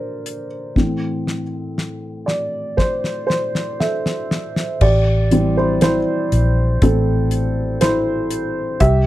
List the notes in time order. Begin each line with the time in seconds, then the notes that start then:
Already playing: D3 A#3 D4 A#4 C5 D5
0.26 closed hi-hat
0.75 A2 E3 C4, kick, snare
1.27 snare
1.78 snare
2.26 D5, snare
2.77 C5, kick, snare
3.04 snare
3.27 C5, snare
3.55 snare
3.80 A4 E5, snare
4.06 snare
4.31 snare
4.56 snare
4.81 A1 G4 D5, kick, crash
5.31 E3 G3 C4, closed hi-hat
5.57 E4 C5
5.81 E4 C5, snare, closed hi-hat
6.32 A#1, closed hi-hat
6.82 A1 C4 A4, kick, closed hi-hat
7.31 closed hi-hat
7.81 E4 C5, snare, closed hi-hat
8.31 closed hi-hat
8.80 C2 G4 E5, kick, closed hi-hat